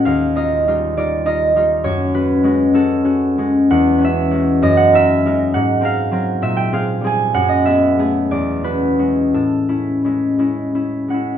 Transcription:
\new Staff \with { instrumentName = "Harp" } { \time 6/8 \key fis \dorian \tempo 4. = 65 << { eis''8 dis''4 d''8 dis''4 | cis''8 b'4 a'4. | fis''8 e''4 dis''16 fis''16 e''4 | fis''8 eis''4 e''16 g''16 f''8 gis''8 |
fis''16 dis''16 e''4 d''8 b'4 | a'2~ a'8 fis''8 | } \\ { dis,8 <dis' eis'>8 <g dis' eis'>8 <g dis' eis'>8 <dis' eis'>8 <g dis' eis'>8 | fis,8 <cis' fis'>8 <gis cis' fis'>8 <gis cis' fis'>8 <cis' fis'>8 <gis cis' fis'>8 | e,8 <cis' fis'>8 <gis cis' fis'>8 fis,8 <dis' ais'>8 <gis dis' ais'>8 | gis,8 <bis ais'>8 <fis bis ais'>8 bes,8 <c' gis'>8 <g c' gis'>8 |
fis,8 <b gis'>8 <a b gis'>8 e,8 <cis' fis'>8 <gis cis' fis'>8 | a,8 <cis' e'>8 <gis cis' e'>8 <gis cis' e'>8 <cis' e'>8 <gis cis' e'>8 | } >> }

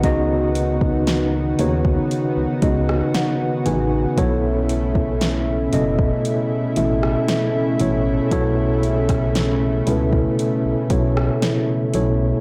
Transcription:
<<
  \new Staff \with { instrumentName = "Tine electric piano" } { \time 4/4 \key b \mixolydian \tempo 4 = 58 <cis b dis' fis' dis''>4 r8 <cis b dis' fis' cis''>8 r8 <cis b dis' fis' dis''>8 fis''8 <cis b dis' fis' b' gis''>8 | <b, b e' a' cis''>4 r8 <b, b e' a' dis''>8 r8 <b, b e' a' e''>8 r8 <b, b e' a' cis''>8 | <b, b e' a' cis''>4 r8 <b, b e' a' b'>8 r8 <b, b e' a' cis''>8 r8 <b, b e' a' cis''>8 | }
  \new Staff \with { instrumentName = "Analog synth pad" } { \time 4/4 \key b \mixolydian <dis b fis'>1 | <cis a e'>1~ | <cis a e'>1 | }
  \new Staff \with { instrumentName = "FM bass" } { \clef bass \time 4/4 \key b \mixolydian cis,4. dis,8 r16 cis,16 cis,8 r8 a,,8 | b,,4. fis,,8 r8 a,,8 r8 a,,8 | b,,4. cis,8 r16 b,,16 b,,8 r8 b,,8 | }
  \new DrumStaff \with { instrumentName = "Drums" } \drummode { \time 4/4 <hh bd>8 hh16 bd16 <hh sn>8 hh16 bd16 hh8 <hh bd>16 ss16 <hh sn>8 hh8 | <hh bd>8 hh16 bd16 <hh sn>8 hh16 bd16 hh8 hh16 ss16 <hh sn>8 hh8 | <hh bd>8 hh16 <hh bd ss>16 <hh sn>8 hh16 bd16 hh8 <hh bd>16 ss16 <hh sn>8 hh8 | }
>>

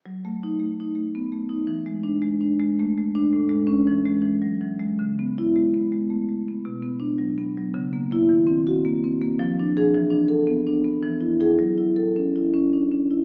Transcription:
<<
  \new Staff \with { instrumentName = "Marimba" } { \time 3/4 \key fis \minor \tempo 4 = 109 \tuplet 3/2 { r4 dis'8 } r2 | \tuplet 3/2 { r4 d'8 } r2 | \tuplet 3/2 { r4 cis'8 } r2 | \tuplet 3/2 { r4 e'8 } r2 |
\tuplet 3/2 { r4 d'8 } r4 \tuplet 3/2 { r4 e'8 } | \tuplet 3/2 { r4 fis'8 } r4 \tuplet 3/2 { r4 aes'8 } | \tuplet 3/2 { r4 a'8 } r4 \tuplet 3/2 { r4 gis'8 } | \tuplet 3/2 { r4 a'8 } r2 | }
  \new Staff \with { instrumentName = "Marimba" } { \time 3/4 \key fis \minor \tuplet 3/2 { fis8 a4 a8 dis'8 a8 b8 a8 dis'8 } | \tuplet 3/2 { e8 gis4 gis8 d'8 gis8 a8 gis8 d'8 } | \tuplet 3/2 { a,8 gis4 e8 gis8 e8 fis8 e8 gis8 } | \tuplet 3/2 { cis8 b4 gis8 b8 gis8 a8 gis8 b8 } |
\tuplet 3/2 { b,8 b4 fis8 b8 fis8 cis8 ais8 ais8 } | \tuplet 3/2 { dis8 bis4 ais8 bis8 ais8 f8 d'8 d'8 } | \tuplet 3/2 { e8 d'4 b8 d'8 b8 e8 e'8 e'8 } | \tuplet 3/2 { fis8 e'4 cis'8 e'8 cis'8 d'8 cis'8 e'8 } | }
>>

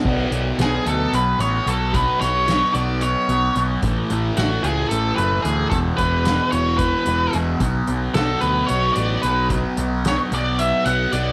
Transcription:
<<
  \new Staff \with { instrumentName = "Lead electric guitar" } { \time 7/8 \key b \dorian \tempo 4 = 111 r4 gis'8 a'8 b'8 cis''8 a'8 | b'8 cis''4 d''8 cis''4 r8 | r4 fis'8 gis'8 a'8 b'8 gis'8 | a'8 b'4 cis''8 b'4 r8 |
r4 a'8 b'8 cis''8 d''8 b'8 | r4 cis''8 d''8 e''8 fis''8 d''8 | }
  \new Staff \with { instrumentName = "Distorted electric guitar" } { \clef bass \time 7/8 \key b \dorian <b, fis b>8 <fis b>8 <b, fis b>8 <fis b>4 <fis b>8 <b, fis b>8 | <b, fis b>8 <fis b>8 <b, fis b>8 <fis b>4 <fis b>8 <b, fis b>8 | <a, e a>8 <e a>8 <a, e a>8 <e a>4 <e a>8 <a, e a>8 | <e, b, e>8 <b, e>8 <e, b, e>8 <b, e>4 <b, e>8 <e, b, e>8 |
<b, fis b>8 <fis b>8 <b, fis b>8 <fis b>4 <fis b>8 <b, fis b>8 | <b, fis b>8 <fis b>8 <b, fis b>8 <fis b>4 <fis b>8 <b, fis b>8 | }
  \new Staff \with { instrumentName = "Picked electric bass" } { \clef bass \time 7/8 \key b \dorian b,,8 b,,8 b,,8 d,8 b,,8 a,,8 b,,8~ | b,,8 b,,4 b,,4 b,,8 b,,8 | a,,8 a,,8 a,,8 cis,8 a,,8 fis,,8 d,8 | e,,8 e,,4 e,,4 e,,8 e,,8 |
b,,8 b,,8 b,,8 d,8 b,,8 a,,8 b,,8~ | b,,8 b,,4 b,,4 b,,8 b,,8 | }
  \new DrumStaff \with { instrumentName = "Drums" } \drummode { \time 7/8 <cymc bd>8 hh8 <hh sn>8 hh8 hh8 hh8 hh8 | <hh bd>8 <hh sn>8 <hh sn>8 hh8 hh8 hh8 hh8 | <hh bd>8 hh8 <hh sn>8 hh8 hh8 hh8 hh8 | <hh bd>8 <hh bd>8 <hh sn>8 hh8 <hh bd>8 hh8 hh8 |
<hh bd>8 hh8 <hh sn>8 hh8 hh8 hh8 hh8 | <hh bd>8 hh8 <hh sn>8 hh8 hh8 hh8 hh8 | }
>>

